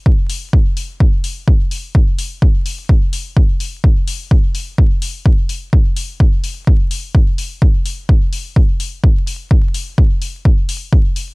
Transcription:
\new DrumStaff \with { instrumentName = "Drums" } \drummode { \time 4/4 \tempo 4 = 127 bd8 hho8 bd8 hho8 bd8 hho8 bd8 hho8 | bd8 hho8 bd8 hho8 bd8 hho8 bd8 hho8 | bd8 hho8 bd8 hho8 bd8 hho8 bd8 hho8 | bd8 hho8 bd8 hho8 bd8 hho8 bd8 hho8 |
bd8 hho8 bd8 hho8 bd8 hho8 bd8 hho8 | bd8 hho8 bd8 hho8 bd8 hho8 bd8 hho8 | }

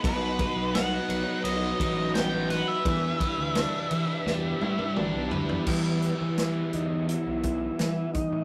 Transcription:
<<
  \new Staff \with { instrumentName = "Lead electric guitar" } { \time 4/4 \key e \minor \tempo 4 = 85 b'4 fis''4 dis''4 g''8 fis''16 e''16~ | e''2. r4 | r1 | }
  \new Staff \with { instrumentName = "Transistor combo organ" } { \time 4/4 \key e \minor << { b'1~ | b'1 | <e g b>8 r4 dis'8 e'4. dis'8 | } \\ { <fis b dis'>1 | <d' e' g'>1 | r1 | } >> }
  \new Staff \with { instrumentName = "Overdriven electric guitar" } { \time 4/4 \key e \minor b,8 b'8 b8 dis'8 fis8 dis'8 b8 b'8 | e8 b'8 d'8 e'8 g8 e'8 d'8 b'8 | <e g b e'>1 | }
  \new Staff \with { instrumentName = "Picked electric bass" } { \clef bass \time 4/4 \key e \minor b,,8. b,,8. b,,16 r16 b,,8 a,,4. | e,8 r16 d,8 r16 e16 r16 e,8 a,16 g,16 a,,16 b,,16 d,16 e,16 | e,8. e8. e,8. b,,8. e8 r16 a,16 | }
  \new DrumStaff \with { instrumentName = "Drums" } \drummode { \time 4/4 <bd cymr>8 <bd cymr>8 <cymr sn>8 cymr8 cymr8 <bd cymr>8 <cymr sn>8 <cymr sn>8 | <bd cymr>8 <bd cymr>8 <cymr sn>8 cymr8 sn8 tommh16 tommh16 toml8 tomfh16 tomfh16 | <cymc bd>8 hh8 <hh sn>8 hh8 hh8 <hh bd>8 <hh sn>8 <hh bd>8 | }
>>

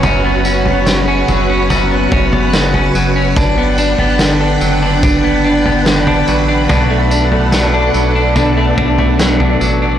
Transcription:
<<
  \new Staff \with { instrumentName = "String machine" } { \time 4/4 \key b \minor \tempo 4 = 72 << { <b' fis''>1~ | <b' fis''>1~ | <b' fis''>1 | } \\ { <cis' fis'>1 | <d' g''>1 | <d' a'>1 | } >> }
  \new Staff \with { instrumentName = "Clean electric guitar" } { \time 4/4 \key b \minor <fis, cis'>16 b16 cis'16 b16 cis16 cis'16 fis16 cis'16 <fis, cis'>16 b16 cis'16 b16 cis16 cis'16 fis16 cis'16 | d'16 b16 d'16 b16 d16 d'16 fis16 d'16 d'16 b16 d'16 b16 d16 d'16 fis16 d'16 | <b, d'>16 a16 d'16 a16 fis16 d'16 fis16 d'16 <b, d'>16 a16 d'16 a16 fis16 d'16 fis16 d'16 | }
  \new Staff \with { instrumentName = "Analog synth bass" } { \clef bass \time 4/4 \key b \minor fis,,4. fis,,4 fis,,4 fis,,8 | g,,8. g,,8. fis,,2 a,,8 | b,,4. b,,4 b,,4 a,,8 | }
  \new DrumStaff \with { instrumentName = "Drums" } \drummode { \time 4/4 <tamb tomfh>8 tamb16 tomfh16 <sn tamb>8 <tamb tomfh>8 <tamb tomfh>8 bd16 tomfh16 <sn tamb>16 tomfh16 tamb8 | <bd tamb tomfh>8 tamb16 tomfh16 <sn tamb>8 tamb8 <bd tamb tomfh>8. tomfh16 <sn tamb>16 tomfh16 tamb8 | <tamb tomfh>8 tamb16 tomfh16 <sn tamb>8 tamb8 <tamb tomfh>8 bd16 tomfh16 <sn tamb>16 tomfh16 tamb8 | }
>>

